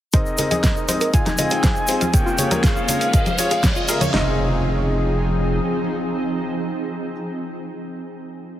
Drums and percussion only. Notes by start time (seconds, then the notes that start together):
0.13 kick, closed hi-hat, shaker
0.26 shaker
0.38 open hi-hat, low conga, shaker
0.51 closed hi-hat, high conga, shaker
0.64 kick, snare, closed hi-hat, shaker
0.77 shaker
0.88 open hi-hat, high conga, shaker
1.01 closed hi-hat, shaker
1.14 kick, closed hi-hat, shaker
1.26 snare, closed hi-hat, high conga, shaker
1.38 open hi-hat, low conga, shaker
1.50 closed hi-hat, shaker
1.63 kick, snare, closed hi-hat, high conga, shaker
1.76 shaker
1.87 open hi-hat, shaker
2.01 closed hi-hat, high conga, shaker
2.14 kick, closed hi-hat, shaker
2.27 shaker
2.38 open hi-hat, low conga, shaker
2.51 closed hi-hat, high conga, shaker
2.64 kick, snare, closed hi-hat, shaker
2.76 shaker
2.88 open hi-hat, low conga, shaker
3.01 closed hi-hat, shaker
3.13 kick, closed hi-hat, shaker
3.26 closed hi-hat, high conga, shaker
3.38 open hi-hat, shaker
3.51 closed hi-hat, shaker
3.63 kick, snare, closed hi-hat, high conga, shaker
3.76 shaker
3.88 open hi-hat, shaker
4.01 closed hi-hat, high conga, low conga, shaker
4.14 snare